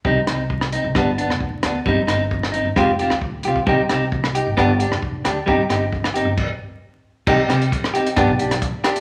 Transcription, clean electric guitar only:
\new Staff \with { instrumentName = "Clean electric guitar" } { \time 4/4 \key c \minor \tempo 4 = 133 <g c' ees'>8 <c' ees'>8 r8 <c' ees'>8 <g b d'>8 <b d'>8 r8 <b d'>8 | <g c' ees'>8 <c' ees'>8 r8 <c' ees'>8 <aes c' f' g'>8 <c' f' g'>8 r8 <c' f' g'>8 | <g c' ees' g'>8 <c' ees' g'>8 r8 <ees' g'>8 <b d' g'>8 <d' g'>8 r8 <d' g'>8 | <g c' ees' g'>8 <c' ees' g'>8 r8 <c' ees' g'>8 r2 |
<g c' ees' g'>8 <c' g'>8 r8 <c' ees' g'>8 <b d' g'>8 <d' g'>8 r8 <d' g'>8 | }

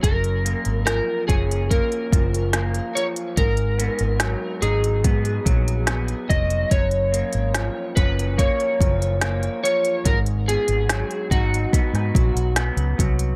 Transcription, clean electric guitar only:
\new Staff \with { instrumentName = "Clean electric guitar" } { \clef bass \time 4/4 \key fis \major \tempo 4 = 72 fis,8 ais8 eis8 cis'8 ais8 eis8 ais8 eis8 | gis,8 b8 fis8 dis'8 b8 fis8 b8 fis8 | fis,8 ais8 eis8 cis'8 ais8 eis8 ais8 eis8 | gis,8 b8 fis8 dis'8 b8 fis8 b8 fis8 | }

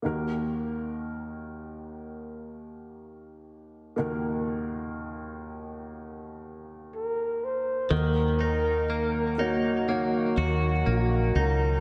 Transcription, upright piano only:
\new Staff \with { instrumentName = "Upright piano" } { \time 4/4 \key ees \minor \tempo 4 = 61 <ees, ees bes ees' ges' bes'>1 | <ees, ees bes ees' ges' bes'>1 | <ees bes ees' ges' bes'>4. <bes ees' ges' des''>8 <bes ees' ges' des''>2 | }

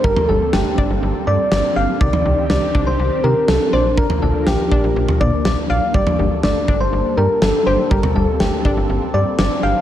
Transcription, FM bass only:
\new Staff \with { instrumentName = "FM bass" } { \clef bass \time 4/4 \key g \minor \tempo 4 = 122 g,,16 r16 g,,16 r16 g,,16 r16 g,,16 g,,16 g,,16 r16 g,16 r16 g,,16 r16 g,,16 r16 | c,16 r16 c,16 r16 c,16 r16 c,16 c,16 c,16 r16 c16 r16 c,16 r16 bes,,8~ | bes,,16 r16 bes,,16 r16 bes,,16 r16 bes,,16 bes,,16 bes,,16 r16 bes,16 r16 bes,,16 r16 bes,,16 r16 | g,,16 r16 g,,16 r16 g,,16 r16 g,,16 g,,16 g,,16 r16 g,16 r16 g,,16 r16 g,,16 r16 |
g,,16 r16 g,,16 r16 g,,16 r16 g,,16 g,,16 g,,16 r16 g,16 r16 g,,16 r16 g,,16 r16 | }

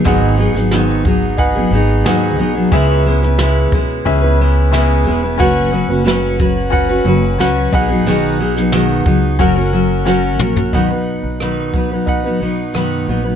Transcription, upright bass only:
\new Staff \with { instrumentName = "Upright bass" } { \clef bass \time 4/4 \key b \major \tempo 4 = 90 gis,,8. gis,,4.~ gis,,16 gis,,8 dis,8 b,,8 | cis,4. b,,8 cis,4. e,,8 | fis,,8. fis,,4.~ fis,,16 fis,,8 cis,8 b,,8 | b,,4. cis,8 fis,,4. ais,,8 |
b,,8. b,,4.~ b,,16 b,,8 fis,8 ais,,8 | }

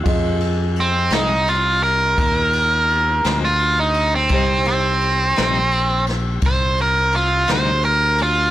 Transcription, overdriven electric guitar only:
\new Staff \with { instrumentName = "Overdriven electric guitar" } { \time 12/8 \key c \minor \tempo 4. = 57 r4 c'8 ees'8 f'8 bes'2~ bes'16 f'8 ees'8 c'16~ | c'8 c'2 r8 c''8 bes'8 f'8 c''8 bes'8 f'8 | }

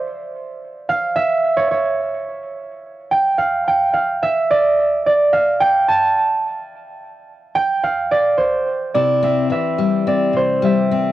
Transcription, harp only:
\new Staff \with { instrumentName = "Harp" } { \time 4/4 \key c \mixolydian \tempo 4 = 108 r4. f''8 e''8. cis''16 cis''8. r16 | r4. g''8 f''8 g''8 f''8 e''8 | d''4 d''8 f''8 g''8 a''4 r8 | r4. g''8 f''8 d''8 c''4 |
d''8 e''8 e''4 d''8 c''8 e''4 | }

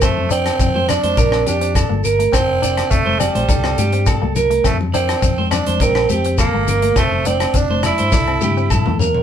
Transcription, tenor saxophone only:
\new Staff \with { instrumentName = "Tenor saxophone" } { \time 4/4 \key f \major \tempo 4 = 104 a8 c'4 d'4 d'4 r8 | c'4 a8 g2 r8 | a8 c'4 d'8 c'4 bes4 | a8 c'8 d'8 e'2 r8 | }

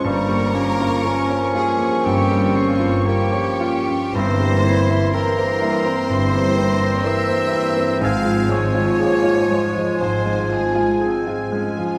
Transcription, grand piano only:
\new Staff \with { instrumentName = "Grand piano" } { \time 4/4 \key f \minor \tempo 4 = 60 g,16 g16 des'16 f'16 bes'16 des''16 f'16 des'16 g,16 g16 des'16 f'16 bes'16 des''16 f'16 des'16 | g,16 g16 c'16 e'16 bes'16 c''16 e'16 c'16 g,16 g16 c'16 e'16 bes'16 c''16 e'16 c'16 | aes,16 f16 aes16 f'16 aes'16 f'16 aes16 f16 aes,16 aes16 f16 f'16 aes'16 f'16 aes16 f16 | }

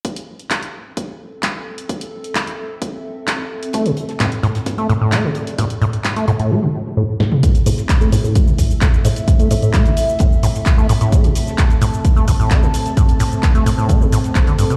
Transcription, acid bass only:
\new Staff \with { instrumentName = "Acid bass" } { \clef bass \time 4/4 \key a \minor \tempo 4 = 130 r1 | r1 | a16 c16 r8 a,16 r16 a,16 r8 a16 a,16 a,16 a16 c16 r8 | a,16 r16 a,16 r8 a16 a,16 a,16 a16 c16 r8 a,16 r16 a,16 r16 |
a,16 r16 a,16 r8 a16 a,16 a,16 a16 c16 r8 a,16 r16 a,16 r16 | r16 a16 a,16 a,16 a16 c16 r8 a,16 r16 a,16 r8 a16 a,16 a,16 | a16 c16 r8 a,16 r16 a,16 r8 a16 a,16 a,16 a16 c16 r8 | a,16 r16 a,16 r8 a16 a,16 a,16 a16 c16 a,16 r16 a,,16 d16 g,16 b,16 | }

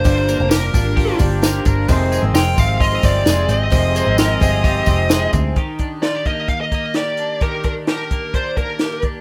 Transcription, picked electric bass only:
\new Staff \with { instrumentName = "Picked electric bass" } { \clef bass \time 4/4 \key ees \major \tempo 4 = 130 g,,8. f,,8. aes,,4 g,,4 g,,8 | f,,8. aes,,16 f,,8 aes,,4 g,,8 f,,8 aes,,8 | f,,8. aes,,8. g,,4 f,,4 d,8 | r1 |
r1 | }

